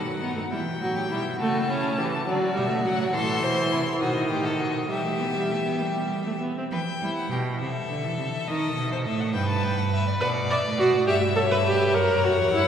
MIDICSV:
0, 0, Header, 1, 5, 480
1, 0, Start_track
1, 0, Tempo, 582524
1, 1155, Time_signature, 6, 3, 24, 8
1, 3541, Tempo, 598205
1, 6901, Tempo, 580271
1, 10369, End_track
2, 0, Start_track
2, 0, Title_t, "Violin"
2, 0, Program_c, 0, 40
2, 0, Note_on_c, 0, 78, 69
2, 394, Note_off_c, 0, 78, 0
2, 437, Note_on_c, 0, 79, 72
2, 1145, Note_off_c, 0, 79, 0
2, 1161, Note_on_c, 0, 81, 76
2, 1878, Note_on_c, 0, 74, 74
2, 1891, Note_off_c, 0, 81, 0
2, 2116, Note_on_c, 0, 76, 73
2, 2128, Note_off_c, 0, 74, 0
2, 2342, Note_off_c, 0, 76, 0
2, 2347, Note_on_c, 0, 78, 77
2, 2577, Note_off_c, 0, 78, 0
2, 2594, Note_on_c, 0, 84, 93
2, 3290, Note_off_c, 0, 84, 0
2, 3303, Note_on_c, 0, 75, 78
2, 4013, Note_off_c, 0, 75, 0
2, 4030, Note_on_c, 0, 76, 79
2, 5218, Note_off_c, 0, 76, 0
2, 5487, Note_on_c, 0, 79, 81
2, 5816, Note_off_c, 0, 79, 0
2, 5838, Note_on_c, 0, 78, 66
2, 5959, Note_on_c, 0, 79, 57
2, 5971, Note_off_c, 0, 78, 0
2, 6083, Note_on_c, 0, 78, 63
2, 6095, Note_off_c, 0, 79, 0
2, 6184, Note_off_c, 0, 78, 0
2, 6188, Note_on_c, 0, 76, 80
2, 6894, Note_on_c, 0, 75, 91
2, 6906, Note_off_c, 0, 76, 0
2, 7255, Note_off_c, 0, 75, 0
2, 7261, Note_on_c, 0, 72, 72
2, 7308, Note_off_c, 0, 72, 0
2, 7378, Note_on_c, 0, 76, 70
2, 7495, Note_on_c, 0, 78, 80
2, 7507, Note_off_c, 0, 76, 0
2, 7607, Note_off_c, 0, 78, 0
2, 7612, Note_on_c, 0, 79, 76
2, 7726, Note_off_c, 0, 79, 0
2, 7731, Note_on_c, 0, 81, 75
2, 7850, Note_on_c, 0, 79, 68
2, 7862, Note_off_c, 0, 81, 0
2, 7965, Note_off_c, 0, 79, 0
2, 7970, Note_on_c, 0, 78, 82
2, 8019, Note_off_c, 0, 78, 0
2, 8099, Note_on_c, 0, 76, 88
2, 8213, Note_off_c, 0, 76, 0
2, 8218, Note_on_c, 0, 74, 68
2, 8266, Note_off_c, 0, 74, 0
2, 8341, Note_on_c, 0, 78, 83
2, 8407, Note_off_c, 0, 78, 0
2, 8581, Note_on_c, 0, 76, 80
2, 8648, Note_off_c, 0, 76, 0
2, 8816, Note_on_c, 0, 74, 73
2, 8882, Note_off_c, 0, 74, 0
2, 9053, Note_on_c, 0, 76, 93
2, 9108, Note_on_c, 0, 78, 72
2, 9121, Note_off_c, 0, 76, 0
2, 9167, Note_on_c, 0, 76, 95
2, 9179, Note_off_c, 0, 78, 0
2, 9768, Note_on_c, 0, 78, 99
2, 9781, Note_off_c, 0, 76, 0
2, 10369, Note_off_c, 0, 78, 0
2, 10369, End_track
3, 0, Start_track
3, 0, Title_t, "Violin"
3, 0, Program_c, 1, 40
3, 179, Note_on_c, 1, 63, 60
3, 417, Note_off_c, 1, 63, 0
3, 422, Note_on_c, 1, 64, 63
3, 488, Note_off_c, 1, 64, 0
3, 670, Note_on_c, 1, 66, 71
3, 789, Note_off_c, 1, 66, 0
3, 793, Note_on_c, 1, 67, 69
3, 841, Note_off_c, 1, 67, 0
3, 905, Note_on_c, 1, 64, 69
3, 1134, Note_off_c, 1, 64, 0
3, 1139, Note_on_c, 1, 66, 80
3, 1398, Note_on_c, 1, 64, 74
3, 1411, Note_off_c, 1, 66, 0
3, 1632, Note_off_c, 1, 64, 0
3, 1637, Note_on_c, 1, 67, 67
3, 1703, Note_off_c, 1, 67, 0
3, 1876, Note_on_c, 1, 66, 82
3, 2589, Note_on_c, 1, 69, 99
3, 2602, Note_off_c, 1, 66, 0
3, 2828, Note_on_c, 1, 72, 92
3, 2840, Note_off_c, 1, 69, 0
3, 3064, Note_on_c, 1, 64, 83
3, 3077, Note_off_c, 1, 72, 0
3, 3299, Note_off_c, 1, 64, 0
3, 3304, Note_on_c, 1, 66, 79
3, 3540, Note_off_c, 1, 66, 0
3, 3547, Note_on_c, 1, 67, 76
3, 3668, Note_on_c, 1, 69, 76
3, 3680, Note_off_c, 1, 67, 0
3, 3785, Note_on_c, 1, 66, 80
3, 3797, Note_off_c, 1, 69, 0
3, 4014, Note_off_c, 1, 66, 0
3, 4019, Note_on_c, 1, 67, 78
3, 5213, Note_off_c, 1, 67, 0
3, 5488, Note_on_c, 1, 71, 68
3, 5552, Note_off_c, 1, 71, 0
3, 5726, Note_on_c, 1, 64, 73
3, 5954, Note_off_c, 1, 64, 0
3, 5960, Note_on_c, 1, 67, 55
3, 6025, Note_off_c, 1, 67, 0
3, 6186, Note_on_c, 1, 69, 69
3, 7584, Note_off_c, 1, 69, 0
3, 7616, Note_on_c, 1, 71, 92
3, 8335, Note_on_c, 1, 74, 98
3, 8348, Note_off_c, 1, 71, 0
3, 9042, Note_off_c, 1, 74, 0
3, 9047, Note_on_c, 1, 76, 83
3, 9282, Note_off_c, 1, 76, 0
3, 9287, Note_on_c, 1, 73, 84
3, 9510, Note_on_c, 1, 71, 83
3, 9523, Note_off_c, 1, 73, 0
3, 9750, Note_on_c, 1, 73, 104
3, 9762, Note_off_c, 1, 71, 0
3, 10369, Note_off_c, 1, 73, 0
3, 10369, End_track
4, 0, Start_track
4, 0, Title_t, "Viola"
4, 0, Program_c, 2, 41
4, 55, Note_on_c, 2, 54, 65
4, 170, Note_off_c, 2, 54, 0
4, 175, Note_on_c, 2, 59, 72
4, 292, Note_off_c, 2, 59, 0
4, 297, Note_on_c, 2, 57, 55
4, 348, Note_off_c, 2, 57, 0
4, 426, Note_on_c, 2, 55, 64
4, 491, Note_off_c, 2, 55, 0
4, 665, Note_on_c, 2, 54, 59
4, 906, Note_off_c, 2, 54, 0
4, 920, Note_on_c, 2, 55, 67
4, 986, Note_off_c, 2, 55, 0
4, 1156, Note_on_c, 2, 57, 92
4, 1388, Note_off_c, 2, 57, 0
4, 1393, Note_on_c, 2, 61, 84
4, 1631, Note_on_c, 2, 52, 94
4, 1644, Note_off_c, 2, 61, 0
4, 1869, Note_off_c, 2, 52, 0
4, 1873, Note_on_c, 2, 54, 86
4, 2098, Note_off_c, 2, 54, 0
4, 2103, Note_on_c, 2, 55, 86
4, 2215, Note_off_c, 2, 55, 0
4, 2220, Note_on_c, 2, 57, 95
4, 2338, Note_off_c, 2, 57, 0
4, 2342, Note_on_c, 2, 54, 90
4, 2581, Note_on_c, 2, 52, 90
4, 2593, Note_off_c, 2, 54, 0
4, 3301, Note_on_c, 2, 51, 74
4, 3313, Note_off_c, 2, 52, 0
4, 4015, Note_off_c, 2, 51, 0
4, 4020, Note_on_c, 2, 55, 70
4, 4141, Note_off_c, 2, 55, 0
4, 4146, Note_on_c, 2, 57, 55
4, 4267, Note_on_c, 2, 59, 62
4, 4279, Note_off_c, 2, 57, 0
4, 4388, Note_off_c, 2, 59, 0
4, 4395, Note_on_c, 2, 55, 66
4, 4517, Note_on_c, 2, 57, 71
4, 4529, Note_off_c, 2, 55, 0
4, 4625, Note_off_c, 2, 57, 0
4, 4630, Note_on_c, 2, 59, 68
4, 4760, Note_on_c, 2, 55, 65
4, 4772, Note_off_c, 2, 59, 0
4, 5116, Note_off_c, 2, 55, 0
4, 5120, Note_on_c, 2, 57, 69
4, 5169, Note_off_c, 2, 57, 0
4, 5238, Note_on_c, 2, 59, 67
4, 5357, Note_off_c, 2, 59, 0
4, 5369, Note_on_c, 2, 60, 64
4, 5415, Note_off_c, 2, 60, 0
4, 8326, Note_on_c, 2, 71, 103
4, 8393, Note_off_c, 2, 71, 0
4, 8570, Note_on_c, 2, 74, 101
4, 8636, Note_off_c, 2, 74, 0
4, 8799, Note_on_c, 2, 66, 111
4, 9035, Note_off_c, 2, 66, 0
4, 9040, Note_on_c, 2, 67, 104
4, 9106, Note_off_c, 2, 67, 0
4, 9275, Note_on_c, 2, 69, 107
4, 9326, Note_off_c, 2, 69, 0
4, 9403, Note_on_c, 2, 71, 98
4, 9452, Note_off_c, 2, 71, 0
4, 9523, Note_on_c, 2, 67, 106
4, 9761, Note_on_c, 2, 70, 117
4, 9774, Note_off_c, 2, 67, 0
4, 10009, Note_on_c, 2, 66, 99
4, 10021, Note_off_c, 2, 70, 0
4, 10247, Note_off_c, 2, 66, 0
4, 10252, Note_on_c, 2, 64, 106
4, 10369, Note_off_c, 2, 64, 0
4, 10369, End_track
5, 0, Start_track
5, 0, Title_t, "Cello"
5, 0, Program_c, 3, 42
5, 0, Note_on_c, 3, 51, 69
5, 397, Note_off_c, 3, 51, 0
5, 429, Note_on_c, 3, 52, 70
5, 671, Note_on_c, 3, 45, 64
5, 684, Note_off_c, 3, 52, 0
5, 914, Note_on_c, 3, 47, 66
5, 926, Note_off_c, 3, 45, 0
5, 1155, Note_off_c, 3, 47, 0
5, 1161, Note_on_c, 3, 49, 67
5, 1858, Note_off_c, 3, 49, 0
5, 1868, Note_on_c, 3, 50, 74
5, 1934, Note_off_c, 3, 50, 0
5, 2109, Note_on_c, 3, 47, 71
5, 2350, Note_on_c, 3, 45, 68
5, 2362, Note_off_c, 3, 47, 0
5, 2582, Note_off_c, 3, 45, 0
5, 2586, Note_on_c, 3, 45, 88
5, 2816, Note_off_c, 3, 45, 0
5, 2825, Note_on_c, 3, 47, 71
5, 3055, Note_off_c, 3, 47, 0
5, 3068, Note_on_c, 3, 48, 84
5, 3134, Note_off_c, 3, 48, 0
5, 3299, Note_on_c, 3, 47, 69
5, 3548, Note_on_c, 3, 45, 63
5, 3560, Note_off_c, 3, 47, 0
5, 3779, Note_off_c, 3, 45, 0
5, 3784, Note_on_c, 3, 47, 68
5, 3848, Note_off_c, 3, 47, 0
5, 4025, Note_on_c, 3, 52, 71
5, 5216, Note_off_c, 3, 52, 0
5, 5480, Note_on_c, 3, 52, 90
5, 5545, Note_off_c, 3, 52, 0
5, 5720, Note_on_c, 3, 55, 81
5, 5785, Note_off_c, 3, 55, 0
5, 5952, Note_on_c, 3, 47, 95
5, 6185, Note_off_c, 3, 47, 0
5, 6198, Note_on_c, 3, 48, 84
5, 6262, Note_off_c, 3, 48, 0
5, 6428, Note_on_c, 3, 50, 82
5, 6547, Note_on_c, 3, 52, 89
5, 6559, Note_off_c, 3, 50, 0
5, 6656, Note_off_c, 3, 52, 0
5, 6661, Note_on_c, 3, 48, 76
5, 6725, Note_off_c, 3, 48, 0
5, 6897, Note_on_c, 3, 51, 95
5, 7127, Note_off_c, 3, 51, 0
5, 7132, Note_on_c, 3, 47, 87
5, 7373, Note_on_c, 3, 45, 106
5, 7386, Note_off_c, 3, 47, 0
5, 7613, Note_on_c, 3, 43, 94
5, 7626, Note_off_c, 3, 45, 0
5, 8325, Note_off_c, 3, 43, 0
5, 8330, Note_on_c, 3, 47, 85
5, 8686, Note_off_c, 3, 47, 0
5, 8690, Note_on_c, 3, 45, 80
5, 8807, Note_on_c, 3, 47, 92
5, 8819, Note_off_c, 3, 45, 0
5, 8925, Note_on_c, 3, 45, 84
5, 8937, Note_off_c, 3, 47, 0
5, 9042, Note_off_c, 3, 45, 0
5, 9047, Note_on_c, 3, 43, 80
5, 9766, Note_on_c, 3, 42, 83
5, 9778, Note_off_c, 3, 43, 0
5, 10132, Note_on_c, 3, 40, 80
5, 10144, Note_off_c, 3, 42, 0
5, 10254, Note_off_c, 3, 40, 0
5, 10259, Note_on_c, 3, 43, 92
5, 10369, Note_off_c, 3, 43, 0
5, 10369, End_track
0, 0, End_of_file